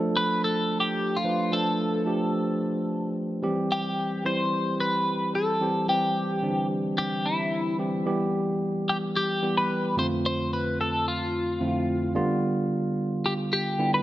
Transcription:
Already playing: tine electric piano F3 A3 D4 A4
0.17 clean electric guitar B4
0.44 clean electric guitar A4
0.80 clean electric guitar G4
1.17 clean electric guitar F4
1.24 tine electric piano F3 A3 D4 B4
1.51 tine electric piano F3 A3 D4 C5, clean electric guitar A4
2.06 tine electric piano F3 A3 D4 G4
3.42 tine electric piano E3 G3 C4 G4
3.72 clean electric guitar G4
4.24 tine electric piano E3 G3 C4 E4, clean electric guitar C5
4.80 clean electric guitar B4
5.35 clean electric guitar A4
5.60 tine electric piano E3 G3 C4 G4
5.88 tine electric piano E3 G3 C4 G4, clean electric guitar G4
6.42 tine electric piano D3 G3 C4 D4
6.49 tine electric piano E3
6.98 clean electric guitar G4
7.26 clean electric guitar E4
7.78 tine electric piano E3 G3 C4 G4
8.05 tine electric piano E3 G3 B3 G4
8.89 clean electric guitar G4
9.17 clean electric guitar G4
9.42 tine electric piano E3 G3 B3 G4
9.58 clean electric guitar B4
9.97 tine electric piano F2 D3 A3 C4 F4, clean electric guitar C5
10.26 clean electric guitar C5
10.53 clean electric guitar B4
10.81 clean electric guitar A4
11.08 clean electric guitar F4
11.60 tine electric piano F2 D3 A3 C4 E4
11.68 tine electric piano F4
12.15 tine electric piano D3 G3 B3 F4
13.26 clean electric guitar G4
13.53 clean electric guitar G4
13.79 tine electric piano D3 G3 B3 E4
13.94 clean electric guitar B4

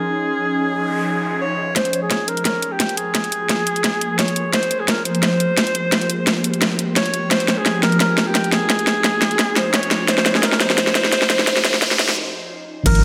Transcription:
Already playing: ambient pad F3 C#4 D#4 C6, alto saxophone G#4
0.37 noise sweep
1.41 alto saxophone C#5
1.76 ambient pad F3 A#3 G#4 C6, alto saxophone C5, kick, snare, closed hi-hat
1.85 closed hi-hat
1.93 closed hi-hat
2.02 alto saxophone G#4
2.11 kick, snare, closed hi-hat
2.28 alto saxophone A#4, closed hi-hat
2.37 closed hi-hat
2.45 alto saxophone A#4, kick, snare, closed hi-hat
2.62 closed hi-hat
2.72 alto saxophone G4
2.80 kick, snare, closed hi-hat
2.89 closed hi-hat
2.97 alto saxophone G#4, closed hi-hat
3.15 kick, snare, closed hi-hat
3.24 closed hi-hat
3.32 closed hi-hat
3.49 kick, snare, closed hi-hat
3.67 closed hi-hat
3.76 closed hi-hat
3.84 kick, snare, closed hi-hat
4.01 closed hi-hat
4.19 alto saxophone C#5, kick, snare, closed hi-hat
4.28 closed hi-hat
4.36 closed hi-hat
4.53 alto saxophone C5, kick, snare, closed hi-hat
4.63 closed hi-hat
4.71 closed hi-hat
4.80 alto saxophone G#4
4.88 alto saxophone A#4, kick, snare, closed hi-hat
5.05 alto saxophone C5, closed hi-hat
5.15 closed hi-hat
5.23 ambient pad G4, kick, snare, closed hi-hat
5.40 closed hi-hat
5.57 kick, snare, closed hi-hat
5.67 closed hi-hat
5.75 closed hi-hat
5.92 kick, snare, closed hi-hat
6.02 closed hi-hat
6.10 closed hi-hat
6.27 kick, snare, closed hi-hat
6.44 closed hi-hat
6.54 closed hi-hat
6.62 kick, snare, closed hi-hat
6.79 closed hi-hat
6.96 alto saxophone C#5, kick, snare, closed hi-hat
7.06 closed hi-hat
7.14 closed hi-hat
7.31 alto saxophone C5, kick, snare, closed hi-hat, riser
7.40 closed hi-hat
7.48 snare, closed hi-hat
7.57 alto saxophone G#4
7.66 kick, snare, closed hi-hat
7.83 alto saxophone A#4, snare, closed hi-hat
7.92 closed hi-hat
8.00 alto saxophone A#4, kick, snare, closed hi-hat
8.18 snare, closed hi-hat
8.27 alto saxophone G4
8.35 kick, snare, closed hi-hat
8.44 closed hi-hat
8.52 alto saxophone G#4, snare, closed hi-hat
8.69 ambient pad C#4 D#4, kick, snare, closed hi-hat
8.79 closed hi-hat
8.87 snare, closed hi-hat
9.04 kick, snare, closed hi-hat
9.22 snare, closed hi-hat
9.31 closed hi-hat
9.39 kick, snare, closed hi-hat
9.56 alto saxophone C5, snare, closed hi-hat
9.74 alto saxophone C#5, kick, snare, closed hi-hat
9.83 closed hi-hat
9.91 snare, closed hi-hat
10.08 alto saxophone C5, kick, snare, closed hi-hat
10.18 snare, closed hi-hat
10.26 snare, closed hi-hat
10.35 alto saxophone G#4, snare
10.43 alto saxophone A#4, kick, snare, closed hi-hat
10.52 snare
10.60 alto saxophone C5, snare, closed hi-hat
10.70 snare, closed hi-hat
10.78 kick, snare, closed hi-hat
10.87 snare
10.95 snare, closed hi-hat
11.04 snare
11.12 kick, snare, closed hi-hat
11.22 snare, closed hi-hat
11.30 snare, closed hi-hat
11.39 snare
11.47 kick, snare, closed hi-hat
11.56 snare, closed hi-hat
11.65 snare, closed hi-hat
11.74 snare
11.82 kick, snare, closed hi-hat
11.91 snare
11.99 snare, closed hi-hat
12.09 snare, closed hi-hat
12.86 sub bass G#1, ambient pad F3 C4, alto saxophone A#4, kick, closed hi-hat, crash, impact
12.95 closed hi-hat

